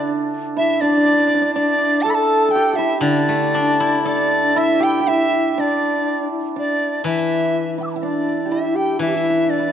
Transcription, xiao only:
0, 0, Header, 1, 2, 480
1, 0, Start_track
1, 0, Tempo, 974026
1, 525, Time_signature, 2, 2, 24, 8
1, 1492, Tempo, 1013514
1, 2932, Tempo, 980392
1, 4720, End_track
2, 0, Start_track
2, 0, Title_t, "Xiao"
2, 0, Program_c, 0, 77
2, 283, Note_on_c, 0, 64, 77
2, 395, Note_off_c, 0, 64, 0
2, 404, Note_on_c, 0, 62, 81
2, 745, Note_off_c, 0, 62, 0
2, 765, Note_on_c, 0, 62, 73
2, 1004, Note_on_c, 0, 69, 92
2, 1012, Note_off_c, 0, 62, 0
2, 1060, Note_off_c, 0, 69, 0
2, 1063, Note_on_c, 0, 69, 102
2, 1364, Note_on_c, 0, 64, 85
2, 1371, Note_off_c, 0, 69, 0
2, 1489, Note_on_c, 0, 62, 80
2, 1496, Note_off_c, 0, 64, 0
2, 1967, Note_off_c, 0, 62, 0
2, 1970, Note_on_c, 0, 62, 78
2, 2199, Note_off_c, 0, 62, 0
2, 2214, Note_on_c, 0, 64, 73
2, 2440, Note_off_c, 0, 64, 0
2, 2450, Note_on_c, 0, 64, 65
2, 2690, Note_on_c, 0, 62, 67
2, 2698, Note_off_c, 0, 64, 0
2, 3045, Note_off_c, 0, 62, 0
2, 3047, Note_on_c, 0, 64, 63
2, 3171, Note_on_c, 0, 62, 63
2, 3178, Note_off_c, 0, 64, 0
2, 3406, Note_off_c, 0, 62, 0
2, 3409, Note_on_c, 0, 64, 70
2, 3765, Note_off_c, 0, 64, 0
2, 3885, Note_on_c, 0, 62, 62
2, 4126, Note_on_c, 0, 64, 68
2, 4133, Note_off_c, 0, 62, 0
2, 4246, Note_on_c, 0, 67, 78
2, 4253, Note_off_c, 0, 64, 0
2, 4365, Note_off_c, 0, 67, 0
2, 4368, Note_on_c, 0, 64, 71
2, 4407, Note_on_c, 0, 67, 62
2, 4414, Note_off_c, 0, 64, 0
2, 4442, Note_on_c, 0, 64, 78
2, 4450, Note_off_c, 0, 67, 0
2, 4606, Note_on_c, 0, 62, 66
2, 4613, Note_off_c, 0, 64, 0
2, 4720, Note_off_c, 0, 62, 0
2, 4720, End_track
0, 0, End_of_file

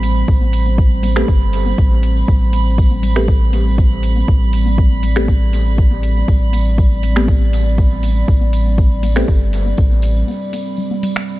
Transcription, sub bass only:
0, 0, Header, 1, 2, 480
1, 0, Start_track
1, 0, Key_signature, 0, "minor"
1, 0, Tempo, 500000
1, 271, Time_signature, 4, 2, 24, 8
1, 10941, End_track
2, 0, Start_track
2, 0, Title_t, "Sub bass"
2, 0, Program_c, 0, 38
2, 0, Note_on_c, 0, 33, 99
2, 223, Note_off_c, 0, 33, 0
2, 270, Note_on_c, 0, 33, 99
2, 1183, Note_off_c, 0, 33, 0
2, 1231, Note_on_c, 0, 31, 90
2, 1663, Note_off_c, 0, 31, 0
2, 1711, Note_on_c, 0, 33, 102
2, 2143, Note_off_c, 0, 33, 0
2, 2191, Note_on_c, 0, 33, 103
2, 4063, Note_off_c, 0, 33, 0
2, 4111, Note_on_c, 0, 33, 101
2, 5983, Note_off_c, 0, 33, 0
2, 6031, Note_on_c, 0, 33, 99
2, 7903, Note_off_c, 0, 33, 0
2, 7950, Note_on_c, 0, 33, 100
2, 8863, Note_off_c, 0, 33, 0
2, 8910, Note_on_c, 0, 31, 90
2, 9343, Note_off_c, 0, 31, 0
2, 9389, Note_on_c, 0, 33, 102
2, 9823, Note_off_c, 0, 33, 0
2, 10941, End_track
0, 0, End_of_file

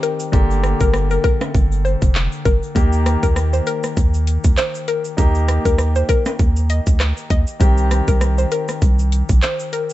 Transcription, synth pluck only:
0, 0, Header, 1, 2, 480
1, 0, Start_track
1, 0, Tempo, 606061
1, 264, Time_signature, 4, 2, 24, 8
1, 7866, End_track
2, 0, Start_track
2, 0, Title_t, "Synth pluck"
2, 0, Program_c, 0, 84
2, 24, Note_on_c, 0, 70, 80
2, 111, Note_off_c, 0, 70, 0
2, 639, Note_on_c, 0, 70, 80
2, 707, Note_off_c, 0, 70, 0
2, 879, Note_on_c, 0, 70, 79
2, 947, Note_off_c, 0, 70, 0
2, 983, Note_on_c, 0, 70, 96
2, 1070, Note_off_c, 0, 70, 0
2, 1464, Note_on_c, 0, 72, 78
2, 1551, Note_off_c, 0, 72, 0
2, 1944, Note_on_c, 0, 70, 76
2, 2031, Note_off_c, 0, 70, 0
2, 2558, Note_on_c, 0, 70, 78
2, 2626, Note_off_c, 0, 70, 0
2, 2798, Note_on_c, 0, 72, 72
2, 2866, Note_off_c, 0, 72, 0
2, 2905, Note_on_c, 0, 70, 90
2, 2992, Note_off_c, 0, 70, 0
2, 3624, Note_on_c, 0, 72, 93
2, 3711, Note_off_c, 0, 72, 0
2, 3866, Note_on_c, 0, 70, 79
2, 3952, Note_off_c, 0, 70, 0
2, 4479, Note_on_c, 0, 70, 83
2, 4547, Note_off_c, 0, 70, 0
2, 4720, Note_on_c, 0, 72, 79
2, 4788, Note_off_c, 0, 72, 0
2, 4825, Note_on_c, 0, 70, 92
2, 4912, Note_off_c, 0, 70, 0
2, 5306, Note_on_c, 0, 75, 78
2, 5392, Note_off_c, 0, 75, 0
2, 5785, Note_on_c, 0, 75, 81
2, 5872, Note_off_c, 0, 75, 0
2, 6399, Note_on_c, 0, 70, 73
2, 6467, Note_off_c, 0, 70, 0
2, 6639, Note_on_c, 0, 72, 68
2, 6707, Note_off_c, 0, 72, 0
2, 6746, Note_on_c, 0, 70, 86
2, 6832, Note_off_c, 0, 70, 0
2, 7465, Note_on_c, 0, 72, 88
2, 7552, Note_off_c, 0, 72, 0
2, 7705, Note_on_c, 0, 70, 78
2, 7792, Note_off_c, 0, 70, 0
2, 7866, End_track
0, 0, End_of_file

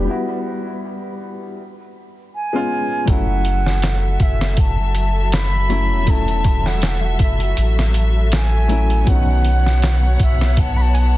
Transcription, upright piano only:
0, 0, Header, 1, 2, 480
1, 0, Start_track
1, 0, Tempo, 750000
1, 49, Time_signature, 4, 2, 24, 8
1, 7153, End_track
2, 0, Start_track
2, 0, Title_t, "Upright piano"
2, 0, Program_c, 0, 0
2, 0, Control_c, 0, 64, 127
2, 30, Note_on_c, 0, 55, 68
2, 44, Note_on_c, 0, 59, 66
2, 55, Note_on_c, 0, 64, 67
2, 57, Control_c, 0, 64, 0
2, 69, Note_on_c, 0, 66, 82
2, 154, Control_c, 0, 64, 127
2, 986, Note_off_c, 0, 55, 0
2, 993, Note_off_c, 0, 59, 0
2, 999, Note_off_c, 0, 64, 0
2, 1006, Note_off_c, 0, 66, 0
2, 1016, Control_c, 0, 64, 0
2, 1122, Control_c, 0, 64, 127
2, 1619, Note_on_c, 0, 56, 88
2, 1626, Note_on_c, 0, 59, 79
2, 1631, Note_on_c, 0, 61, 80
2, 1637, Note_on_c, 0, 65, 103
2, 1942, Note_off_c, 0, 56, 0
2, 1945, Note_off_c, 0, 59, 0
2, 1948, Note_off_c, 0, 61, 0
2, 1951, Note_off_c, 0, 65, 0
2, 1954, Note_on_c, 0, 54, 75
2, 1968, Note_on_c, 0, 57, 70
2, 1977, Control_c, 0, 64, 0
2, 1981, Note_on_c, 0, 61, 64
2, 1994, Note_on_c, 0, 64, 81
2, 2090, Control_c, 0, 64, 127
2, 3615, Note_off_c, 0, 54, 0
2, 3623, Note_off_c, 0, 57, 0
2, 3629, Note_off_c, 0, 61, 0
2, 3636, Note_off_c, 0, 64, 0
2, 3642, Note_on_c, 0, 54, 84
2, 3648, Note_on_c, 0, 57, 81
2, 3655, Note_on_c, 0, 61, 76
2, 3660, Note_on_c, 0, 64, 97
2, 3857, Note_off_c, 0, 54, 0
2, 3863, Note_off_c, 0, 57, 0
2, 3866, Note_off_c, 0, 61, 0
2, 3867, Note_on_c, 0, 54, 73
2, 3869, Note_off_c, 0, 64, 0
2, 3882, Note_on_c, 0, 57, 69
2, 3895, Note_on_c, 0, 61, 65
2, 3908, Note_on_c, 0, 64, 81
2, 5532, Note_off_c, 0, 54, 0
2, 5539, Note_off_c, 0, 57, 0
2, 5546, Note_off_c, 0, 61, 0
2, 5553, Note_off_c, 0, 64, 0
2, 5557, Note_on_c, 0, 54, 88
2, 5563, Note_on_c, 0, 57, 82
2, 5571, Note_on_c, 0, 61, 79
2, 5577, Note_on_c, 0, 64, 94
2, 5777, Note_off_c, 0, 54, 0
2, 5780, Note_off_c, 0, 57, 0
2, 5784, Note_off_c, 0, 61, 0
2, 5787, Note_off_c, 0, 64, 0
2, 5788, Note_on_c, 0, 54, 73
2, 5802, Note_on_c, 0, 59, 69
2, 5814, Note_on_c, 0, 61, 69
2, 5816, Control_c, 0, 64, 0
2, 5829, Note_on_c, 0, 51, 79
2, 5948, Control_c, 0, 64, 127
2, 7153, Note_off_c, 0, 51, 0
2, 7153, Note_off_c, 0, 54, 0
2, 7153, Note_off_c, 0, 59, 0
2, 7153, Note_off_c, 0, 61, 0
2, 7153, End_track
0, 0, End_of_file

